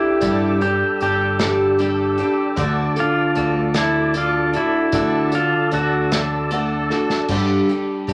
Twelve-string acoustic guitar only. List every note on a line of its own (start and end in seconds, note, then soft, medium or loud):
0.00 0.20 G3 soft
0.00 0.21 D4 soft
0.00 0.21 G4 soft
0.00 0.21 A4 soft
0.21 0.61 G2 medium
0.21 0.61 D3 medium
0.21 0.62 G3 medium
0.21 0.61 D4 medium
0.21 0.61 G4 medium
0.21 0.60 A4 medium
0.61 1.00 G3 soft
0.61 1.01 D4 soft
0.61 1.01 G4 medium
0.61 1.01 A4 medium
1.02 1.40 G3 medium
1.02 1.40 D4 medium
1.02 1.39 G4 medium
1.02 1.40 A4 medium
1.41 1.81 G2 medium
1.41 1.81 D3 medium
1.41 1.77 G3 soft
1.41 1.78 D4 medium
1.41 1.79 G4 medium
1.41 1.80 A4 medium
1.78 2.19 G3 medium
1.78 2.19 D4 medium
1.78 2.18 G4 medium
1.78 2.17 A4 medium
2.18 2.56 G3 soft
2.18 2.56 D4 soft
2.18 2.58 G4 medium
2.18 2.57 A4 medium
2.56 2.97 D3 medium
2.56 2.97 A3 loud
2.56 2.97 D4 medium
2.56 2.98 F#4 medium
2.56 2.95 A4 loud
2.96 3.35 D4 soft
2.96 3.36 A4 medium
3.35 3.74 A3 medium
3.35 3.74 D4 medium
3.35 3.73 A4 medium
3.75 4.15 D3 medium
3.75 4.13 A3 medium
3.75 4.14 D4 soft
3.75 4.15 F#4 medium
3.75 4.15 A4 medium
4.14 4.54 A3 medium
4.14 4.53 D4 medium
4.14 4.52 A4 medium
4.53 4.92 D4 soft
4.53 4.92 F#4 soft
4.53 4.93 A4 medium
4.93 5.33 D3 medium
4.93 5.33 A3 medium
4.93 5.32 D4 medium
4.93 5.33 F#4 medium
4.93 5.30 A4 medium
5.32 5.71 D4 soft
5.32 5.72 A4 medium
5.71 6.11 A3 medium
5.71 6.11 D4 medium
5.71 6.11 F#4 medium
5.71 6.10 A4 medium
6.12 6.52 D3 medium
6.12 6.50 A3 medium
6.12 6.51 D4 medium
6.12 6.51 F#4 medium
6.12 6.51 A4 medium
6.51 6.90 A3 medium
6.51 6.91 D4 medium
6.51 6.91 F#4 medium
6.51 6.90 A4 medium
6.91 7.30 D4 soft
6.91 7.31 F#4 medium
6.91 7.30 A4 medium
7.30 7.69 G2 medium
7.30 7.69 D3 medium
7.30 7.70 G3 medium
7.30 7.69 D4 medium
7.30 7.68 G4 medium
7.30 7.68 A4 medium
7.69 8.06 G3 soft
7.69 8.07 D4 soft
7.69 8.08 G4 soft
7.69 8.08 A4 medium
8.07 8.13 G3 medium
8.07 8.13 D4 medium
8.07 8.13 G4 medium
8.07 8.13 A4 medium